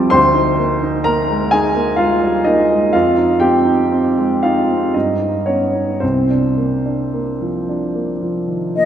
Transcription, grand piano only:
Already playing: F3 G3 C4 E4 A4 D5 A5 D6
0.10 D2 C5 C6
0.34 D#4
0.59 A#3
0.83 D#4
1.04 A#3 A#4 A#5
1.29 G#3
1.51 D#4 G#4 G#5
1.76 A#3
1.96 G#3 F4 F5
2.23 G3
2.44 A#3 D#4 D#5
2.71 G#3
2.93 F2 F4 F5
3.18 D#4
3.40 C4 G4 G5
3.65 D#4
3.92 C4
4.18 G#3
4.43 D#4 F4 F5
4.71 C4
4.94 G2 D#4 D#5
5.22 D#4
5.46 B3 C#4 C#5
5.75 D#4
6.00 C2 C4 C5
6.30 D4
6.57 A#3
6.86 D4
7.14 A#3
7.41 F3
7.69 D4
7.95 A#3
8.22 F3
8.48 D#3
8.76 A#3

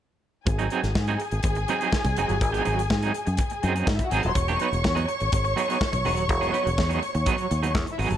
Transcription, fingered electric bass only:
0.47 G#1
0.83 G#1
0.95 G#2
1.32 G#1
1.44 G#1
2.05 C2
2.18 F#1
2.30 G1
2.41 G#1
2.67 G#1
2.91 G#2
3.27 F#2
3.64 F#2
3.87 G#2
4.12 G#1
4.25 D#1
4.36 E1
4.72 E1
4.85 E2
5.21 G#1
5.33 G#1
5.93 B1
6.06 E1
6.17 D#1
6.30 E1
6.66 E1
6.78 E2
7.15 D#2
7.51 D#2
7.75 E2
7.99 G#1
8.10 G1

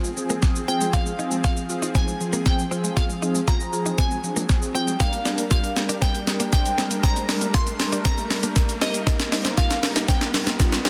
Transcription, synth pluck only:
Already playing: F5
0.68 G5
0.94 F5
1.44 F5
1.96 G#5
2.46 G5
2.97 F5
3.48 A#5
3.98 G#5
4.75 G5
5.00 F5
5.51 F5
6.02 G5
6.53 G5
7.03 A#5
7.54 C6
8.05 A#5
8.82 D#5
9.58 F5
10.08 G5

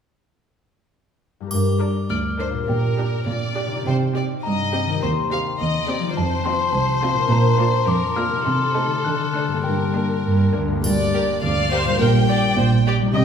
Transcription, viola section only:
1.80 D4 A#4
2.39 D4 A#4
2.99 D4 G4
3.56 D4 G4
4.15 C4 G4
4.73 C4 G4
5.32 C4 G4
5.88 C4 G4
6.46 C4 F4
7.03 C4 F4
7.59 A#3 F4
8.18 A#3 F4
8.75 A3 D#4
9.35 A3 D4
9.94 A#3 D4
10.54 A#3 D4
11.43 D5
11.72 C5
12.00 A#4
12.29 D5
12.58 C5
12.87 D5
13.15 D#5

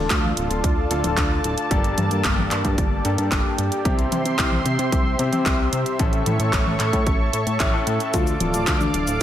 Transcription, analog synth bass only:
0.10 D2
0.37 D1
0.50 D1
0.64 D2
0.91 D1
1.04 D1
1.17 D2
1.44 D1
1.71 G1
1.98 G2
2.11 G2
2.25 G1
2.52 G2
2.65 G2
2.78 G1
3.05 G2
3.18 G2
3.32 G1
3.58 G2
3.85 C2
4.12 C3
4.25 C3
4.39 C2
4.65 C3
4.79 C3
4.92 C2
5.19 C3
5.33 C3
5.46 C2
5.73 C3
6.00 A1
6.26 A2
6.39 A2
6.53 A1
6.80 A2
6.93 A2
7.07 A1
7.33 A2
7.47 A2
7.60 A1
7.87 A2
8.14 D2
8.41 D1
8.54 D1
8.67 D2
8.94 D1
9.07 D1

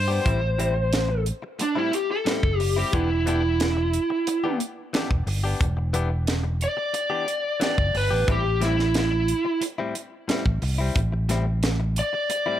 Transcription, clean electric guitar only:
0.08 B3 D4 G4
0.24 A2 G3 C4 E4
0.42 muted clean electric guitar stroke
0.58 A2 G3 C4 E4
0.75 muted clean electric guitar stroke
1.08 muted clean electric guitar stroke
1.42 muted clean electric guitar stroke
1.59 muted clean electric guitar stroke
1.75 A2 G3 C4 E4
1.93 muted clean electric guitar stroke
2.25 A2 G3 C4 E4
2.60 muted clean electric guitar stroke
2.76 G3 C4 E4
2.93 E3 B3 D4 G4
3.10 muted clean electric guitar stroke
3.26 E3 B3 D4 G4
3.43 muted clean electric guitar stroke
3.77 muted clean electric guitar stroke
4.10 muted clean electric guitar stroke
4.27 muted clean electric guitar stroke
4.44 E3 B3 D4 G4
4.60 muted clean electric guitar stroke
4.93 E3 B3 D4 G4
5.10 muted clean electric guitar stroke
5.27 muted clean electric guitar stroke
5.44 B3 D4 G4
5.77 muted clean electric guitar stroke
5.93 E3 B3 D4 G4
6.10 muted clean electric guitar stroke
6.44 muted clean electric guitar stroke
6.77 muted clean electric guitar stroke
6.94 muted clean electric guitar stroke
7.10 E3 B3 D4 G4
7.27 muted clean electric guitar stroke
7.60 E3 B3 D4 G4
7.77 muted clean electric guitar stroke
7.94 muted clean electric guitar stroke
8.11 B3 D4 G4
8.27 A2 G3 C4 E4
8.44 muted clean electric guitar stroke
8.60 A2 G3 C4 E4
8.78 muted clean electric guitar stroke
9.11 muted clean electric guitar stroke
9.45 muted clean electric guitar stroke
9.61 muted clean electric guitar stroke
9.78 A2 G3 C4 E4
9.95 muted clean electric guitar stroke
10.28 A2 G3 C4 E4
10.62 muted clean electric guitar stroke
10.78 G3 C4 E4
11.12 muted clean electric guitar stroke
11.29 A2 G3 C4 E4
11.46 muted clean electric guitar stroke
11.80 muted clean electric guitar stroke
12.13 muted clean electric guitar stroke
12.30 muted clean electric guitar stroke
12.46 A2 G3 C4 E4

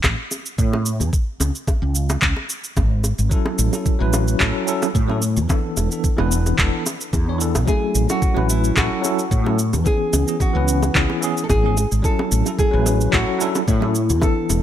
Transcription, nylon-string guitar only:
7.68 G#4
8.10 F#4
8.50 E4
8.78 F#4
9.87 G#4
10.41 F#4
10.96 E4
11.44 A4
11.50 G#4
12.05 A4
12.59 G#4
13.14 F#4
13.41 D4
13.69 E4
14.23 A4

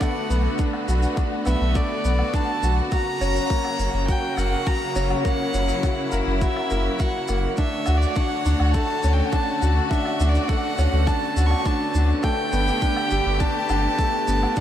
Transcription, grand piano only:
Already playing: B3 D4 F#4
0.01 A3
0.30 B3
0.59 D4
0.88 F#4
1.17 D4
1.46 B3
1.75 A3
2.05 B3
2.34 D4
2.63 F#4
2.92 F#4
3.21 C#4
3.50 A#3
3.79 C#4
4.09 F#4
4.38 A#4
4.67 F#4
4.96 C#4
5.25 A#3
5.54 C#4
5.84 F#4
6.12 A#4
6.42 F#4
6.71 A#3
7.00 F#4
7.29 A#3
7.58 D4
7.87 F#4
8.17 D4
8.46 D4
8.75 A3
9.04 C#4
9.33 D4
9.62 F#4
9.91 D4
10.20 D4
10.50 A3
10.79 C#4
11.07 D4
11.37 F#4
11.66 D4
11.95 D4
12.24 A3
12.53 B3
12.82 D4
13.11 G4
13.40 D4
13.70 D4
13.99 A3
14.28 B3
14.57 D4

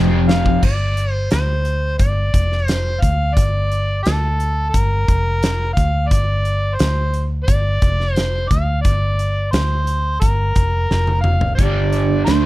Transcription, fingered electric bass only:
Already playing: F1
0.63 G1
1.32 D2
2.00 G1
2.34 F1
3.03 D2
3.37 G1
4.06 D2
4.74 G1
5.09 F1
5.77 D2
6.11 G1
6.80 D2
7.48 G1
7.82 F1
8.51 D2
8.85 G1
9.53 D2
10.22 G1
10.56 F1
10.91 F1
11.59 G1
12.27 D2

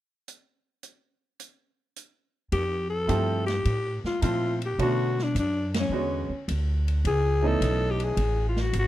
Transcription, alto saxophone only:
2.53 G4
2.90 A4
3.46 G4
4.07 F4
4.23 F4
4.66 G4
4.82 F#4
5.23 D4
5.39 D4
5.80 C#4
7.07 G#4
7.48 A4
7.91 G4
8.04 G#4
8.49 F4
8.62 F#4
8.79 F#4

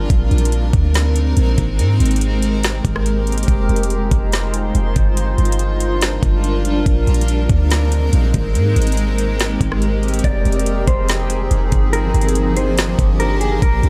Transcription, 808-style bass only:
0.10 A#1
0.31 A#1
0.73 D2
1.37 A#1
1.58 G#1
1.79 G#2
2.00 G#1
2.85 G#1
3.48 F1
3.69 F1
4.11 F1
4.75 F1
4.96 G1
5.38 G1
6.23 G1
6.86 A#1
7.07 A#1
7.50 D2
8.13 A#1
8.34 G#1
8.55 G#2
8.76 G#1
9.61 G#1
10.24 F1
10.45 F1
10.88 F1
11.51 F1
11.72 G1
12.14 G1
12.99 G1
13.62 A#1
13.83 A#1

